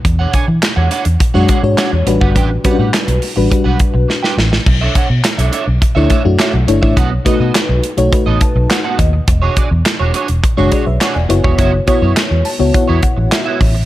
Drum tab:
CC |----------------|----------------|x---------------|----------------|
HH |x-x-x-xxx-x-x-x-|x-x-xxo-x-x-----|--x-xxx-x-x-x-x-|x-x-x-xxx-x-x-x-|
CP |----x-------x---|----x-----------|----x-------x---|----x-------x---|
SD |----o-------o---|----o-------oooo|----o-------o---|----o-------o---|
BD |o-o-----o-o----o|o-o-----o-o-----|o-o-----o-o----o|o-o-----o-o---o-|

CC |----------------|----------------|
HH |x-x-x-xxx-x-x-x-|x-x-x-o-x-x-x-o-|
CP |----x-------x---|----x-------x---|
SD |----o-------o---|----o-------o---|
BD |o-o-----o-o----o|o-o-----o-o---o-|